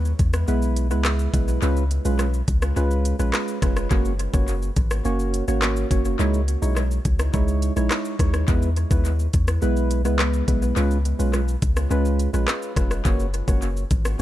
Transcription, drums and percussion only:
0.05 shaker medium
0.19 kick loud
0.19 closed hi-hat medium
0.19 shaker medium
0.33 cross-stick loud
0.33 shaker medium
0.48 shaker medium
0.62 shaker medium
0.76 closed hi-hat medium
0.76 shaker medium
0.91 shaker medium
1.05 cross-stick loud
1.05 clap loud
1.05 shaker medium
1.19 shaker medium
1.34 kick loud
1.34 closed hi-hat medium
1.34 shaker medium
1.48 shaker medium
1.62 shaker medium
1.77 shaker medium
1.91 closed hi-hat medium
1.91 shaker medium
2.05 shaker medium
2.19 cross-stick loud
2.19 shaker medium
2.34 shaker medium
2.48 kick loud
2.48 closed hi-hat medium
2.48 shaker medium
2.62 cross-stick loud
2.62 shaker medium
2.76 shaker medium
2.91 shaker medium
3.05 closed hi-hat medium
3.05 shaker medium
3.19 shaker medium
3.33 cross-stick loud
3.33 clap loud
3.33 shaker medium
3.48 shaker medium
3.62 kick loud
3.62 cross-stick loud
3.62 closed hi-hat medium
3.62 shaker medium
3.77 cross-stick medium
3.77 shaker medium
3.91 kick loud
3.91 shaker medium
4.05 shaker medium
4.19 closed hi-hat medium
4.19 shaker soft
4.34 kick loud
4.34 shaker medium
4.48 shaker medium
4.62 shaker medium
4.76 kick loud
4.76 closed hi-hat medium
4.76 shaker medium
4.91 cross-stick loud
4.91 shaker medium
5.05 shaker medium
5.19 shaker medium
5.34 closed hi-hat medium
5.34 shaker medium
5.48 shaker medium
5.62 cross-stick loud
5.62 clap loud
5.62 shaker medium
5.76 shaker medium
5.91 kick loud
5.91 closed hi-hat medium
5.91 shaker medium
6.05 shaker medium
6.19 shaker medium
6.34 shaker medium
6.48 closed hi-hat medium
6.48 shaker soft
6.62 shaker medium
6.76 cross-stick loud
6.76 shaker medium
6.91 shaker medium
7.05 kick loud
7.05 closed hi-hat medium
7.05 shaker medium
7.19 cross-stick loud
7.19 shaker medium
7.34 kick loud
7.34 shaker medium
7.48 shaker medium
7.62 closed hi-hat medium
7.62 shaker medium
7.77 shaker medium
7.91 cross-stick loud
7.91 clap loud
7.91 shaker medium
8.05 shaker medium
8.19 kick loud
8.19 cross-stick medium
8.19 closed hi-hat medium
8.19 shaker medium
8.34 cross-stick loud
8.34 shaker medium
8.48 kick loud
8.48 shaker medium
8.62 shaker medium
8.76 closed hi-hat medium
8.76 shaker soft
8.91 kick loud
8.91 shaker medium
9.05 shaker medium
9.19 shaker medium
9.33 kick loud
9.33 closed hi-hat medium
9.33 shaker medium
9.48 cross-stick loud
9.48 shaker medium
9.62 shaker medium
9.76 shaker medium
9.91 closed hi-hat medium
9.91 shaker medium
10.05 shaker medium
10.19 cross-stick loud
10.19 clap loud
10.19 shaker medium
10.34 shaker medium
10.48 kick loud
10.48 closed hi-hat medium
10.48 shaker medium
10.62 shaker medium
10.77 shaker medium
10.91 shaker medium
11.05 closed hi-hat medium
11.05 shaker soft
11.20 shaker medium
11.33 cross-stick medium
11.33 shaker medium
11.48 shaker medium
11.62 kick loud
11.62 closed hi-hat medium
11.62 shaker medium
11.76 cross-stick loud
11.76 shaker medium
11.91 shaker medium
12.05 shaker medium
12.19 closed hi-hat medium
12.19 shaker medium
12.34 shaker medium
12.48 cross-stick loud
12.48 clap loud
12.48 shaker medium
12.62 shaker medium
12.76 kick loud
12.76 cross-stick medium
12.76 closed hi-hat medium
12.76 shaker medium
12.91 cross-stick medium
12.91 shaker medium
13.05 kick loud
13.05 shaker medium
13.20 shaker medium
13.34 closed hi-hat medium
13.34 shaker medium
13.48 kick loud
13.48 shaker medium
13.62 shaker medium
13.77 shaker medium
13.91 kick loud
13.91 closed hi-hat medium
13.91 shaker medium
14.05 cross-stick loud
14.05 shaker medium

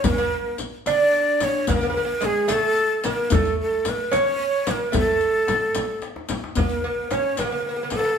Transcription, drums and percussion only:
0.04 riq medium
0.04 frame drum loud
0.04 tombak dum medium
0.18 riq soft
0.33 tombak ka soft
0.58 riq soft
0.58 frame drum medium
0.86 riq soft
0.86 tombak tek medium
0.86 frame drum medium
1.14 riq soft
1.14 tombak ka soft
1.40 riq soft
1.40 tombak tek medium
1.40 frame drum medium
1.67 riq medium
1.67 tombak dum medium
1.67 frame drum medium
1.81 riq soft
1.96 tombak ka soft
2.22 riq soft
2.22 tombak tek soft
2.22 frame drum medium
2.48 riq medium
2.48 tombak tek medium
2.48 frame drum medium
2.76 riq soft
2.76 tombak ka soft
3.04 riq medium
3.04 tombak tek medium
3.04 frame drum medium
3.30 riq medium
3.30 tombak dum loud
3.30 frame drum loud
3.45 riq soft
3.58 tombak ka soft
3.85 riq medium
3.85 tombak tek medium
3.85 frame drum medium
4.12 riq medium
4.12 tombak tek medium
4.12 frame drum medium
4.39 riq soft
4.39 tombak ka soft
4.67 riq medium
4.67 tombak tek medium
4.67 frame drum medium
4.93 riq medium
4.93 frame drum loud
4.93 tombak dum medium
5.08 tombak ka soft
5.21 riq soft
5.48 riq soft
5.48 tombak tek medium
5.48 frame drum medium
5.75 riq medium
5.75 tombak tek medium
5.75 frame drum medium
6.02 riq soft
6.02 tombak tek medium
6.16 tombak ka medium
6.29 riq medium
6.29 tombak tek medium
6.29 frame drum medium
6.44 tombak ka medium
6.55 riq medium
6.55 frame drum medium
6.55 tombak dum medium
6.69 riq soft
6.85 tombak ka soft
7.11 riq soft
7.11 tombak tek medium
7.11 frame drum medium
7.37 riq soft
7.37 tombak tek medium
7.37 frame drum medium
7.90 riq soft
7.90 tombak tek medium
7.90 frame drum medium

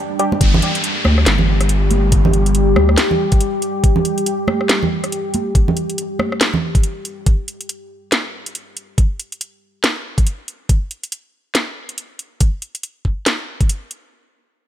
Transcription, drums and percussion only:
0.19 closed hi-hat medium
0.32 muted conga medium
0.32 high conga medium
0.41 kick loud
0.41 closed hi-hat medium
0.54 low conga loud
0.62 closed hi-hat medium
0.75 closed hi-hat medium
0.84 closed hi-hat medium
1.05 cross-stick medium
1.05 high conga medium
1.18 cross-stick medium
1.26 snare loud
1.26 closed hi-hat medium
1.38 low conga medium
1.61 cross-stick soft
1.61 closed hi-hat medium
1.69 closed hi-hat medium
1.91 closed hi-hat medium
1.91 high conga medium
2.12 kick loud
2.12 closed hi-hat medium
2.25 low conga loud
2.33 closed hi-hat medium
2.46 closed hi-hat soft
2.55 closed hi-hat medium
2.76 cross-stick medium
2.76 high conga medium
2.89 cross-stick soft
2.98 snare loud
2.98 closed hi-hat medium
3.11 low conga medium
3.32 kick loud
3.32 closed hi-hat medium
3.41 closed hi-hat medium
3.62 closed hi-hat medium
3.84 kick loud
3.84 closed hi-hat medium
3.96 low conga medium
4.05 closed hi-hat medium
4.18 closed hi-hat soft
4.26 closed hi-hat medium
4.48 cross-stick medium
4.48 high conga medium
4.61 cross-stick soft
4.69 snare loud
4.69 closed hi-hat medium
4.83 low conga medium
5.04 cross-stick soft
5.04 closed hi-hat medium
5.12 closed hi-hat medium
5.34 closed hi-hat medium
5.34 high conga medium
5.55 kick loud
5.55 closed hi-hat medium
5.68 low conga medium
5.77 closed hi-hat soft
5.90 closed hi-hat soft
5.98 closed hi-hat medium
6.19 cross-stick medium
6.19 high conga medium
6.32 cross-stick medium
6.41 snare loud
6.41 closed hi-hat medium
6.54 low conga medium
6.75 kick loud
6.75 closed hi-hat soft
6.83 closed hi-hat medium
7.05 closed hi-hat soft
7.26 kick loud
7.26 closed hi-hat medium
7.48 closed hi-hat soft
7.61 closed hi-hat soft
7.69 closed hi-hat medium
8.12 snare loud
8.12 closed hi-hat medium
8.46 closed hi-hat soft
8.55 closed hi-hat medium
8.77 closed hi-hat soft
8.98 kick loud
8.98 closed hi-hat medium
9.20 closed hi-hat medium
9.32 closed hi-hat soft
9.41 closed hi-hat medium
9.84 snare loud
9.84 closed hi-hat medium
10.18 kick medium
10.18 closed hi-hat soft
10.27 closed hi-hat medium
10.48 closed hi-hat soft
10.69 kick loud
10.69 closed hi-hat medium
10.91 closed hi-hat soft
11.03 closed hi-hat soft
11.12 closed hi-hat medium
11.55 snare loud
11.55 closed hi-hat medium
11.89 closed hi-hat soft
11.98 closed hi-hat medium
12.19 closed hi-hat medium
12.41 kick loud
12.41 closed hi-hat medium
12.62 closed hi-hat medium
12.75 closed hi-hat medium
12.83 closed hi-hat medium
13.05 kick medium
13.26 snare loud
13.26 closed hi-hat medium
13.61 kick medium
13.61 closed hi-hat medium
13.69 closed hi-hat medium
13.91 closed hi-hat soft

